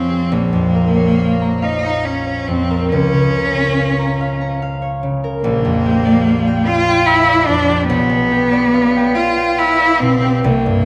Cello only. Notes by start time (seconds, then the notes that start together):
Already playing: C4
0.33 A#3
1.63 D#4
2.05 C#4
2.47 C4
2.89 C#4
5.43 A#3
6.67 F4
7.06 E4
7.46 D4
7.87 B3
9.15 F4
9.59 E4
10.00 C4
10.45 A#3